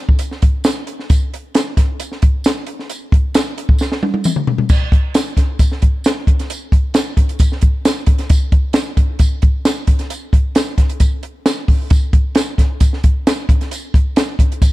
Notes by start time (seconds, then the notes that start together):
0.09 kick
0.19 closed hi-hat, tambourine
0.31 snare
0.42 kick, closed hi-hat
0.64 snare, closed hi-hat, tambourine
0.87 closed hi-hat
0.99 snare
1.10 kick, closed hi-hat, tambourine
1.34 closed hi-hat
1.55 snare, closed hi-hat, tambourine
1.77 kick, snare, closed hi-hat
2.00 closed hi-hat, tambourine
2.12 snare
2.22 kick, closed hi-hat
2.44 snare, closed hi-hat, tambourine
2.67 closed hi-hat
2.79 snare
2.90 closed hi-hat, tambourine
3.12 kick, closed hi-hat
3.34 snare, closed hi-hat, tambourine
3.58 closed hi-hat
3.69 kick
3.79 snare, tambourine
3.92 snare
4.03 high tom
4.14 high tom
4.24 mid tom, tambourine
4.36 mid tom
4.47 floor tom
4.58 floor tom
4.69 kick, crash, tambourine
4.92 kick, closed hi-hat
5.14 snare, closed hi-hat, tambourine
5.37 kick, snare, closed hi-hat
5.59 kick, closed hi-hat, tambourine
5.72 snare
5.82 kick, closed hi-hat
6.04 snare, closed hi-hat, tambourine
6.27 kick, closed hi-hat
6.39 snare, closed hi-hat
6.50 closed hi-hat, tambourine
6.72 kick, closed hi-hat
6.94 snare, closed hi-hat, tambourine
7.17 kick, closed hi-hat
7.29 closed hi-hat
7.39 kick, closed hi-hat, tambourine
7.52 snare
7.61 kick, closed hi-hat
7.85 snare, closed hi-hat, tambourine
8.06 kick, closed hi-hat
8.18 snare, closed hi-hat
8.29 kick, closed hi-hat, tambourine
8.52 kick, closed hi-hat
8.73 snare, closed hi-hat, tambourine
8.97 kick, closed hi-hat
9.19 kick, closed hi-hat, tambourine
9.42 kick, closed hi-hat
9.65 snare, closed hi-hat, tambourine
9.87 kick, closed hi-hat
9.99 snare, closed hi-hat
10.10 closed hi-hat, tambourine
10.33 kick, closed hi-hat
10.55 snare, closed hi-hat, tambourine
10.78 kick, snare, closed hi-hat
10.89 closed hi-hat
11.00 kick, closed hi-hat, tambourine
11.23 closed hi-hat
11.46 snare, closed hi-hat, tambourine
11.68 kick, open hi-hat
11.90 kick, closed hi-hat, tambourine
12.13 kick, closed hi-hat
12.35 snare, closed hi-hat, tambourine
12.58 kick, snare, closed hi-hat
12.80 kick, closed hi-hat, tambourine
12.93 snare
13.04 kick, closed hi-hat
13.27 snare, closed hi-hat, tambourine
13.49 kick, closed hi-hat
13.61 snare, closed hi-hat
13.71 closed hi-hat, tambourine
13.94 kick, closed hi-hat
14.16 snare, closed hi-hat, tambourine
14.39 kick, closed hi-hat
14.52 closed hi-hat
14.62 kick, closed hi-hat, tambourine